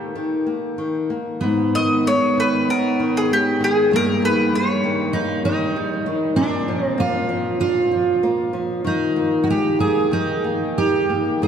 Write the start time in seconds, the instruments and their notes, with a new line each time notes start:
Already playing: nylon-string guitar A#3, mandolin G4
0.15 nylon-string guitar D#3
0.47 nylon-string guitar A#3
0.78 nylon-string guitar D#3
1.10 nylon-string guitar A#3
1.41 nylon-string guitar G#2, twelve-string acoustic guitar B3
1.75 nylon-string guitar D#3, mandolin D#5
2.06 nylon-string guitar G#3, mandolin C#5
2.37 nylon-string guitar D#3, mandolin B4
2.69 nylon-string guitar B3, mandolin A#4
3.00 nylon-string guitar D#3
3.17 mandolin G#4
3.31 nylon-string guitar G#3, mandolin G4
3.60 nylon-string guitar D#3, mandolin G#4
3.91 nylon-string guitar G2, twelve-string acoustic guitar A#3
3.96 mandolin A#4
4.22 nylon-string guitar D#3, mandolin B4
4.53 nylon-string guitar G3, mandolin C#5
4.84 nylon-string guitar D#3
5.13 nylon-string guitar A#3, twelve-string acoustic guitar D#4
5.45 nylon-string guitar D#3, twelve-string acoustic guitar D#4
5.76 nylon-string guitar G3
6.06 nylon-string guitar D#3
6.36 nylon-string guitar A#2, twelve-string acoustic guitar D4
6.68 nylon-string guitar F3
6.85 twelve-string acoustic guitar C4
6.98 nylon-string guitar A#3, twelve-string acoustic guitar F4
7.29 nylon-string guitar F3
7.60 nylon-string guitar D4, twelve-string acoustic guitar F4
7.92 nylon-string guitar F3
8.23 nylon-string guitar A#3
8.53 nylon-string guitar F3
8.84 nylon-string guitar D#3, twelve-string acoustic guitar D#4
9.16 nylon-string guitar A#3
9.44 nylon-string guitar G#3, twelve-string acoustic guitar F#4
9.50 twelve-string acoustic guitar G4
9.79 nylon-string guitar A#3, twelve-string acoustic guitar G#4
10.11 nylon-string guitar D#3, twelve-string acoustic guitar D#4
10.44 nylon-string guitar A#3
10.78 nylon-string guitar D#4, twelve-string acoustic guitar G4
11.10 nylon-string guitar A#3
11.42 nylon-string guitar G#2, twelve-string acoustic guitar G#4